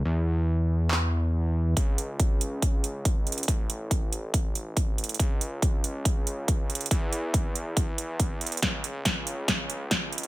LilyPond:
<<
  \new Staff \with { instrumentName = "Analog synth bass" } { \clef bass \time 4/4 \key cis \minor \tempo 4 = 140 e,1 | cis,1 | a,,1 | cis,1 |
e,1 | cis,1 | }
  \new DrumStaff \with { instrumentName = "Drums" } \drummode { \time 4/4 r4 r4 hc4 r4 | <hh bd>8 hh8 <hh bd>8 hh8 <hh bd>8 hh8 <hh bd>8 hh32 hh32 hh32 hh32 | <hh bd>8 hh8 <hh bd>8 hh8 <hh bd>8 hh8 <hh bd>8 hh32 hh32 hh32 hh32 | <hh bd>8 hh8 <hh bd>8 hh8 <hh bd>8 hh8 <hh bd>8 hh32 hh32 hh32 hh32 |
<hh bd>8 hh8 <hh bd>8 hh8 <hh bd>8 hh8 <hh bd>8 hh32 hh32 hh32 hh32 | <hh bd sn>8 hh8 <hh bd sn>8 hh8 <hh bd sn>8 hh8 <hh bd sn>8 hh32 hh32 hh16 | }
>>